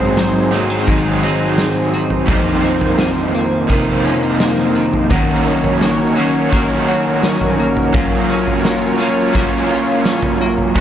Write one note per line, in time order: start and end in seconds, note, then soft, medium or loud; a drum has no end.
0.00 0.52 G#2 medium
0.00 2.29 G#2 medium
0.00 0.87 D#3 medium
0.00 0.52 F#3 medium
0.00 2.26 F#3 medium
0.00 0.52 C4 medium
0.00 0.53 C4 medium
0.00 5.07 C4 medium
0.00 0.51 D#4 medium
0.00 1.23 D#4 medium
0.00 7.89 D#4 medium
0.00 2.26 G#4 medium
0.00 5.07 C5 medium
0.00 floor tom medium
0.17 1.93 F#3 medium
0.17 snare loud
0.17 tambourine medium
0.51 0.70 A#3 medium
0.51 0.88 C4 soft
0.51 0.87 D#4 medium
0.51 tambourine medium
0.56 0.87 F#3 soft
0.70 1.58 C4 soft
0.86 1.22 G#2 medium
0.86 2.99 D#3 medium
0.86 1.23 D#3 medium
0.86 1.23 F#3 medium
0.86 1.23 C4 medium
0.86 1.20 D#4 medium
0.86 kick medium
0.86 floor tom medium
0.86 tambourine medium
1.22 2.31 C4 medium
1.22 2.29 D#4 medium
1.22 tambourine medium
1.26 2.29 F#3 medium
1.58 2.64 C4 medium
1.58 snare loud
1.58 tambourine medium
1.94 2.36 F#3 medium
1.94 tambourine medium
2.10 floor tom medium
2.26 3.66 F2 medium
2.26 5.11 F2 medium
2.26 3.68 C3 medium
2.26 3.70 D#3 medium
2.26 5.08 F3 medium
2.26 4.04 D#4 medium
2.26 10.72 A#4 medium
2.26 kick loud
2.26 floor tom loud
2.31 3.72 A#3 medium
2.31 3.73 D#4 medium
2.63 3.34 A#3 medium
2.63 tambourine medium
2.81 floor tom medium
2.99 4.76 D#3 medium
2.99 snare loud
2.99 tambourine loud
3.35 4.40 A#3 medium
3.35 tambourine medium
3.67 5.10 F2 medium
3.67 5.09 C3 medium
3.67 5.11 C3 medium
3.67 5.10 D#3 loud
3.67 kick medium
3.67 floor tom medium
3.67 tambourine medium
3.72 5.11 A#3 medium
3.72 5.12 D#4 loud
4.05 4.23 C#4 medium
4.05 tambourine medium
4.23 5.11 D#4 soft
4.40 5.46 A#3 medium
4.40 snare medium
4.40 tambourine medium
4.76 5.11 D#3 medium
4.76 tambourine medium
4.93 floor tom medium
5.10 6.16 D#3 medium
5.10 7.93 D#3 medium
5.10 10.72 F#3 medium
5.10 6.19 A#3 medium
5.10 10.72 C#4 medium
5.10 6.17 C#4 loud
5.10 6.88 F#4 medium
5.10 6.15 F#4 loud
5.10 7.91 C#5 medium
5.10 kick loud
5.10 floor tom loud
5.46 6.18 C#4 medium
5.46 tambourine medium
5.64 floor tom medium
5.81 6.53 A#3 medium
5.81 snare loud
5.81 tambourine loud
6.15 6.53 C#4 soft
6.15 7.24 C#4 medium
6.15 6.52 F#4 medium
6.15 tambourine medium
6.19 6.52 A#3 soft
6.50 7.92 D#3 medium
6.50 7.94 A#3 medium
6.50 7.59 A#3 medium
6.50 kick medium
6.50 floor tom medium
6.50 tambourine medium
6.54 7.94 C#4 medium
6.54 7.95 F#4 loud
6.88 7.95 F#4 medium
6.88 tambourine medium
7.23 8.29 C#4 medium
7.23 snare loud
7.23 tambourine medium
7.41 floor tom medium
7.59 8.65 A#3 medium
7.59 tambourine medium
7.77 floor tom medium
7.93 9.01 F#3 loud
7.93 10.80 F#3 medium
7.93 9.00 A#3 medium
7.93 9.00 C#4 loud
7.93 10.73 F4 medium
7.93 9.70 F4 medium
7.93 8.97 F4 loud
7.93 10.73 C#5 medium
7.93 kick loud
7.93 floor tom loud
8.30 8.99 C#4 medium
8.30 tambourine medium
8.47 floor tom medium
8.65 9.35 A#3 medium
8.65 snare loud
8.65 tambourine medium
8.98 10.05 C#4 medium
8.98 9.36 C#4 soft
8.98 9.34 F4 medium
8.98 tambourine medium
9.03 9.34 A#3 soft
9.33 10.75 F#3 medium
9.33 10.76 A#3 loud
9.33 10.40 A#3 medium
9.33 kick medium
9.33 floor tom medium
9.33 tambourine medium
9.38 10.77 C#4 medium
9.38 10.78 F4 loud
9.70 10.76 F4 medium
9.70 tambourine medium
10.05 10.80 C#4 medium
10.05 snare loud
10.05 tambourine medium
10.22 floor tom medium
10.41 10.80 A#3 medium
10.41 tambourine medium
10.58 floor tom medium
10.75 10.80 G#2 loud
10.75 10.80 G#2 medium
10.75 10.80 D#3 medium
10.75 10.80 F#3 loud
10.75 10.80 F#3 medium
10.75 10.80 C4 medium
10.75 10.80 D#4 medium
10.75 10.80 G#4 medium
10.75 10.80 C5 medium
10.75 kick loud
10.75 floor tom loud